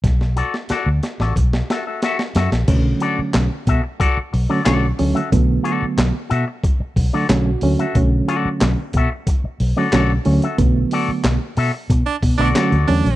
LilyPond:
<<
  \new Staff \with { instrumentName = "Clean electric guitar" } { \time 4/4 \key b \minor \tempo 4 = 91 r8 <fis' a' d''>16 r16 <fis' a' d''>16 r8 <fis' a' d''>16 r8 <fis' a' e''>16 <fis' a' e''>16 <fis' a' e''>16 r16 <fis' a' e''>16 r16 | r8 <fis' a' d''>16 r8. <fis' a' e''>16 r16 <fis' a' d''>16 r8 <fis' a' d''>16 <fis' a' d''>16 r8 <fis' a' e''>16 | r8 <fis' a' d''>16 r8. <fis' a' e''>16 r4 <fis' a' d''>16 r8. <fis' a' e''>16 | r8 <fis' a' d''>16 r8. <fis' a' e''>16 r4 <fis' a' d''>16 <fis' a' d''>16 r8 <fis' a' e''>16 |
r8 <fis' a' d''>16 r8. <fis' a' e''>16 r4 <fis' a' d''>16 <fis' a' d''>8 r8 | }
  \new Staff \with { instrumentName = "Baritone saxophone" } { \time 4/4 \key b \minor r1 | r1 | r1 | r1 |
r2 r16 d'16 r16 d'16 r8 d'8 | }
  \new Staff \with { instrumentName = "Reed electric piano" } { \time 4/4 \key b \minor r1 | r1 | r2. fis'4 | r1 |
r1 | }
  \new Staff \with { instrumentName = "Reed electric piano" } { \clef bass \time 4/4 \key b \minor r1 | <cis d fis a cis'>4~ <cis d fis a cis'>16 r4. <d fis a cis'>16 <d fis a cis'>16 r16 <d fis a cis'>16 r16 | <d fis a b>4~ <d fis a b>16 r4. <d fis a d'>16 <d fis a cis'>16 r16 <d fis a cis'>16 r16 | <cis d fis a cis'>4~ <cis d fis a cis'>16 r4. <d fis a cis'>16 <d fis a cis'>16 r16 <d fis a cis'>16 r16 |
<d fis a b>4~ <d fis a b>16 r4. <d fis a b>16 <d fis a cis'>16 r16 <d fis a cis'>16 r16 | }
  \new Staff \with { instrumentName = "Fingered electric bass" } { \clef bass \time 4/4 \key b \minor b,,8. r8 d,16 r16 a,,16 b,,8 r4 fis,16 ais,,16 | b,,8 r8 b,,16 r16 b,16 r8. b,,16 r16 b,,8 d,16 r16 | b,,8 r8 b,,16 r16 b,16 r8. b,,16 r16 b,,8 d,16 r16 | b,,8 r8 b,,16 r16 b,16 r8. b,,16 r16 b,,8 d,16 r16 |
b,,8 r8 b,,16 r16 b,16 r16 b,16 r16 b,16 b,,16 r16 d,16 e,16 ais,,16 | }
  \new DrumStaff \with { instrumentName = "Drums" } \drummode { \time 4/4 <hh bd sn>16 sn16 hh16 sn16 <hh sn>8 <hh sn>16 sn16 <hh bd>16 sn16 <hh sn>8 <hh sn>16 sn16 <hh sn>16 <hh sn>16 | <cymc hh bd>8 hh8 <hc hh sn>8 <hh bd>8 <hh bd>8 hho8 <hc hh sn>8 hho16 hh16 | <hh bd>8 hh8 <hc hh sn>8 hh8 <hh bd>8 <hho bd>8 <hc hh sn>8 hho16 hh16 | <hh bd>8 hh8 <hc hh sn>8 <hh bd>8 <hh bd>8 hho8 <hc hh sn>8 hho16 hh16 |
<hh bd>8 hho8 <hc hh sn>8 hho8 <hh bd>8 <hho bd>8 <hc hh sn>16 hh16 hho16 hh16 | }
>>